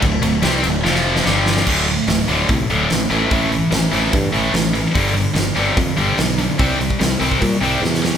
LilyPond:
<<
  \new Staff \with { instrumentName = "Distorted electric guitar" } { \clef bass \time 4/4 \key d \minor \tempo 4 = 146 <d, a,>8 <d, a,>8 <c g c'>8 <d, a,>8 <f, c f>4 <g, d g>4 | <d, a, d>8 <d, a,>8 <d, a,>8 <d, a, d>8 <d, a,>8 <d, a, d>8 <d, a,>8 <a, e a>8 | <a, e a>8 <a, e>8 <a, e>8 <a, e a>8 <a, e>8 <a, e a>8 <a, e>8 <a, e>8 | <g, d g>8 <g, d>8 <g, d>8 <g, d g>8 <g, d>8 <g, d g>8 <g, d>8 <g, d>8 |
<c g c'>8 <c g>8 <c g>8 <c g c'>8 <c g>8 <c g c'>8 <c g>8 <c g>8 | }
  \new Staff \with { instrumentName = "Fingered electric bass" } { \clef bass \time 4/4 \key d \minor d,,8 d,,8 c,8 d,,8 f,,4 g,,4 | d,,4 d,,8 d,,8 c,8 d,,8 a,,8 a,,8 | a,,4 a,,8 a,,8 g,8 a,,8 a,,4 | g,,4 g,,8 g,,8 f,8 g,,8 b,,4 |
c,4 c,8 c,8 bes,8 c,8 e,4 | }
  \new DrumStaff \with { instrumentName = "Drums" } \drummode { \time 4/4 <bd cymr>8 cymr8 <cymr sn>8 cymr8 sn16 sn8 sn16 sn8 sn16 sn16 | <cymc bd>8 hho8 <hho sn>8 hho8 <hho bd>8 hho8 <hho sn>8 hho8 | <hho bd>8 hho8 <hho sn>8 hho8 <hho bd>8 hho8 <hho sn>8 hho8 | <hho bd>8 hho8 <hho sn>8 hho8 <hho bd>8 hho8 <hho sn>8 hho8 |
<hho bd>8 hho16 bd16 <hho sn>8 hho16 bd16 <hho bd>8 hho8 sn16 sn16 sn16 sn16 | }
>>